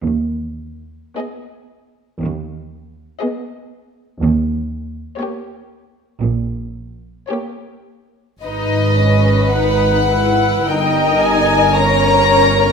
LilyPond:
<<
  \new Staff \with { instrumentName = "Violin section" } { \time 4/4 \key gis \minor \tempo 4 = 57 r4 dis''4 r4 dis''4 | r4 cis''4 r4 cis''4 | dis''4 fis''4 g''8 gis''8 ais''4 | }
  \new Staff \with { instrumentName = "Violin section" } { \time 4/4 \key gis \minor << { r4 gis'4 r4 gis'4 | r4 g'4 r4 g'4 | b'2 ais'2 | } \\ { r1 | r1 | dis'8 cis'8 dis'8 e'8 dis'4 cis'4 | } >> }
  \new Staff \with { instrumentName = "Viola section" } { \time 4/4 \key gis \minor r4 b4 r4 b4 | r4 ais4 r4 ais4 | r2 dis''4 cis''4 | }
  \new Staff \with { instrumentName = "Cello section" } { \clef bass \time 4/4 \key gis \minor dis,4 r4 dis,4 r4 | dis,4 r4 ais,4 r4 | gis,2 g,2 | }
  \new Staff \with { instrumentName = "Double bass section" } { \clef bass \time 4/4 \key gis \minor dis,4 r4 dis,4 r4 | dis,4 r4 ais,,4 r4 | gis,,2 g,,2 | }
>>